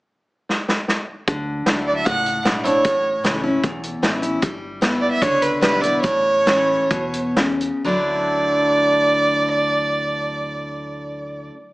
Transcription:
0.49 snare medium
0.68 snare medium
0.88 snare medium
1.27 1.61 D2 medium
1.27 2.02 D3 medium
1.27 kick loud
1.27 closed hi-hat medium
1.66 2.00 D2 medium
1.66 2.04 F#3 medium
1.66 2.05 A3 medium
1.66 2.05 D4 medium
1.66 2.06 E4 medium
1.66 snare loud
1.66 closed hi-hat medium
1.87 1.96 D5 medium
1.96 2.07 E5 medium
2.05 2.40 C#2 medium
2.05 2.81 A2 medium
2.05 2.45 F#5 loud
2.05 kick loud
2.05 closed hi-hat medium
2.26 closed hi-hat medium
2.45 2.79 B1 medium
2.45 2.64 F#3 medium
2.45 2.65 A3 medium
2.45 2.65 D4 medium
2.45 2.63 E4 medium
2.45 snare medium
2.45 closed hi-hat medium
2.63 2.85 D4 soft
2.63 2.84 E4 medium
2.63 3.39 C#5 medium
2.63 closed hi-hat medium
2.84 3.18 A1 medium
2.84 3.60 A2 medium
2.84 kick loud
2.84 closed hi-hat medium
3.23 3.57 C#2 medium
3.23 3.43 E3 medium
3.23 3.43 A3 medium
3.23 3.44 C#4 medium
3.23 3.42 E4 medium
3.23 snare medium
3.23 closed hi-hat soft
3.43 3.64 C#4 soft
3.43 3.63 E4 medium
3.63 3.97 B1 medium
3.63 4.38 E2 medium
3.63 kick medium
3.63 closed hi-hat soft
3.83 closed hi-hat medium
4.02 4.36 A1 medium
4.02 4.21 E3 soft
4.02 4.22 A3 medium
4.02 4.22 C#4 medium
4.02 4.21 E4 medium
4.02 snare medium
4.02 closed hi-hat soft
4.22 4.42 C#4 soft
4.22 4.41 E4 medium
4.22 closed hi-hat medium
4.42 5.09 G1 medium
4.42 4.80 G3 medium
4.42 kick loud
4.42 closed hi-hat medium
4.81 5.19 G3 medium
4.81 5.20 B3 medium
4.81 5.20 E4 medium
4.81 snare medium
4.81 closed hi-hat medium
5.01 5.11 D5 medium
5.11 5.23 E5 medium
5.22 5.56 C#2 medium
5.22 6.00 D3 medium
5.22 5.43 C#5 medium
5.22 kick medium
5.22 closed hi-hat medium
5.42 5.61 B4 medium
5.42 closed hi-hat medium
5.61 5.97 B1 medium
5.61 5.81 G3 medium
5.61 5.82 B3 soft
5.61 5.81 E4 medium
5.61 5.83 B4 medium
5.61 snare medium
5.61 closed hi-hat medium
5.81 6.04 B3 soft
5.81 6.02 E4 medium
5.81 6.00 D5 medium
5.81 closed hi-hat medium
6.01 6.77 A1 medium
6.01 6.86 A2 medium
6.01 7.31 C#5 medium
6.01 kick loud
6.01 closed hi-hat medium
6.46 6.88 E3 medium
6.46 6.88 A3 medium
6.46 6.89 C#4 medium
6.46 6.89 E4 medium
6.46 snare medium
6.46 closed hi-hat medium
6.90 7.70 E2 medium
6.90 7.34 B2 medium
6.90 kick medium
6.90 closed hi-hat soft
7.14 closed hi-hat medium
7.36 7.82 C#3 medium
7.36 snare medium
7.36 closed hi-hat soft
7.61 closed hi-hat medium
7.84 11.49 D2 medium
7.84 11.53 D3 medium
7.84 11.54 F#3 medium
7.84 11.55 A3 medium
7.84 11.56 D4 medium
7.84 11.50 D5 loud
7.88 11.57 E4 medium

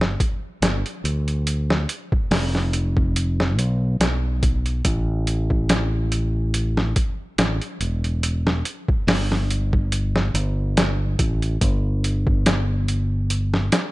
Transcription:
0.00 0.16 G1 medium
0.00 snare medium
0.20 kick medium
0.20 closed hi-hat medium
0.62 0.82 G1 medium
0.62 snare loud
0.62 closed hi-hat medium
0.86 closed hi-hat soft
1.04 1.85 D2 medium
1.04 closed hi-hat medium
1.28 closed hi-hat soft
1.47 closed hi-hat medium
1.70 snare medium
1.89 closed hi-hat medium
2.12 kick medium
2.31 3.58 F1 medium
2.31 snare loud
2.31 open hi-hat medium
2.55 snare soft
2.73 closed hi-hat medium
2.97 kick medium
3.16 closed hi-hat medium
3.40 snare medium
3.58 3.96 B1 medium
3.58 closed hi-hat medium
4.00 4.81 B1 medium
4.00 snare loud
4.00 closed hi-hat medium
4.43 kick medium
4.43 closed hi-hat medium
4.66 closed hi-hat soft
4.85 6.93 A1 loud
4.85 kick loud
4.85 closed hi-hat medium
5.27 closed hi-hat medium
5.50 kick medium
5.69 snare loud
5.69 closed hi-hat medium
6.12 closed hi-hat medium
6.54 closed hi-hat medium
6.77 snare soft
6.96 kick medium
6.96 closed hi-hat medium
7.38 7.59 A1 medium
7.38 snare loud
7.38 closed hi-hat medium
7.62 closed hi-hat soft
7.80 8.61 E1 medium
7.80 closed hi-hat medium
8.04 closed hi-hat soft
8.23 closed hi-hat medium
8.47 snare medium
8.65 closed hi-hat medium
8.88 kick medium
9.07 10.30 G1 loud
9.07 snare loud
9.07 open hi-hat medium
9.32 snare soft
9.51 closed hi-hat medium
9.73 kick medium
9.92 closed hi-hat medium
10.16 snare medium
10.34 11.15 G1 medium
10.34 closed hi-hat medium
10.77 snare loud
10.77 closed hi-hat medium
11.19 11.57 A1 medium
11.19 kick medium
11.19 closed hi-hat medium
11.42 closed hi-hat soft
11.61 13.69 G1 loud
11.61 kick loud
11.61 closed hi-hat medium
12.04 closed hi-hat medium
12.27 kick medium
12.46 snare loud
12.46 closed hi-hat medium
12.88 closed hi-hat medium
13.30 closed hi-hat medium
13.54 snare soft
13.72 snare medium
13.72 closed hi-hat medium

